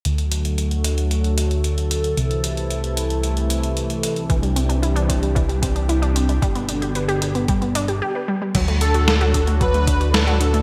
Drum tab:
CC |----------------|----------------|----------------|----------------|
HH |xxxxxxxxxxxxxxxx|xxxxxxxxxxxxxxxx|xxxxxxxxxxxxxxxx|xxxxxxxxxxxx----|
SD |----------------|----------------|----------------|----------------|
BD |----------------|----------------|o-----o-o-o-----|o-------o-------|

CC |x---------------|
HH |xxxxxxxxxxxxxxxx|
SD |----o-------o---|
BD |o-----o-o-o-----|